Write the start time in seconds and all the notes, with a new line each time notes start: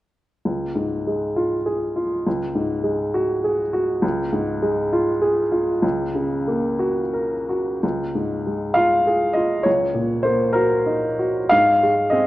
0.45 C#2
0.75 G#2
1.07 G#3
1.36 F4
1.66 G#4
1.96 F4
2.26 C#2
2.55 G#2
2.84 G#3
3.14 F#4
3.44 G#4
3.73 F#4
4.02 C#2
4.33 G#2
4.63 G#3
4.93 F4
5.22 G#4
5.52 F4
5.82 C#2
6.15 C#3
6.47 A#3
6.79 F#4
7.14 A#4
7.49 F#4
7.83 C#2
8.15 G#2
8.47 G#3
8.74 F4 F5
9.07 G#4
9.33 F4 D#5
9.63 C#2 C#5
9.94 A#2
10.23 A#3 C5
10.53 F#4 A#4
10.86 D#4
11.19 F#4
11.49 G#2 F5
11.83 G#3
12.10 C4 G#4 D#5